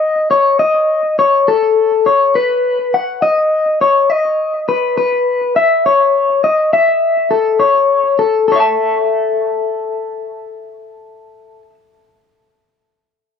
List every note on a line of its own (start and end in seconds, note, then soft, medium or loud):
0.00 0.30 D#5 medium
0.31 0.59 C#5 medium
0.59 1.18 D#5 medium
1.19 1.48 C#5 medium
1.48 2.06 A4 loud
2.06 2.35 C#5 medium
2.35 2.93 B4 medium
2.94 3.22 F#5 medium
3.22 3.80 D#5 loud
3.81 4.10 C#5 medium
4.10 4.68 D#5 medium
4.69 4.96 B4 medium
4.98 5.56 B4 medium
5.56 5.85 E5 medium
5.86 6.44 C#5 medium
6.44 6.73 D#5 medium
6.73 7.31 E5 medium
7.31 7.60 A4 medium
7.60 8.18 C#5 medium
8.19 8.47 A4 medium
8.48 11.62 A4 medium
8.48 8.60 C#5 medium
8.56 11.70 E5 medium
8.60 11.74 A5 medium